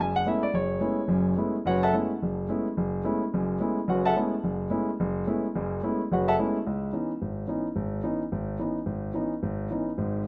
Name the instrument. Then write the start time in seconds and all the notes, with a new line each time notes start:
grand piano
Already playing: F#1 F#2
0.01 G#5
0.16 F#5
0.26 G#3 A3 B3 C#4 E4 E5
0.43 D5
0.54 F#1 C#5
0.80 G#3 A3 B3 C#4 E4
1.08 F#1 F#2
1.37 G#3 A3 B3 C#4 E4
1.66 F#1 F#2 F#4 B4 C#5 F#5
1.83 A4 E5 F#5 A5
1.93 G#3 A3 B3 C#4 E4
2.22 F#1
2.49 G#3 A3 B3 C#4 E4
2.77 F#1
3.04 G#3 A3 B3 C#4 E4
3.34 F#1 F#2
3.60 G#3 A3 B3 C#4 E4
3.88 F#1 F#2 F#4 B4 C#5 F#5
4.05 A4 E5 F#5 A5
4.16 G#3 A3 B3 C#4 E4
4.44 F#1
4.70 G#3 A3 B3 C#4 E4
5.00 F#1
5.27 G#3 A3 B3 C#4 E4
5.55 F#1 F#2
5.83 G#3 A3 B3 C#4 E4
6.12 F#1 F#4 B4 C#5 F#5
6.28 A4 E5 F#5 A5
6.39 G#3 A3 B3 C#4 E4
6.67 C#2
6.93 E3 B3 C#4 D#4
7.22 G#1
7.48 E3 B3 C#4 D#4
7.76 G#1
8.03 E3 B3 C#4 D#4
8.32 G#1
8.59 E3 B3 C#4 D#4
8.86 G#1
9.14 E3 B3 C#4 D#4
9.43 G#1
9.71 E3 B3 C#4 D#4
9.98 G#1 G#2